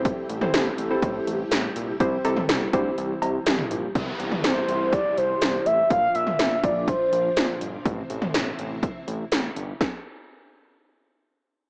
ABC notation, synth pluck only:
X:1
M:4/4
L:1/16
Q:1/4=123
K:Cmix
V:1 name="Synth pluck"
[CEAc]2 z [CEAc]3 z [CEAc]6- [CEAc] z2 | [CEGc]2 [CEGA]3 z [CEGc]6- [CEGc] z3 | z16 | z16 |
z16 | z16 |]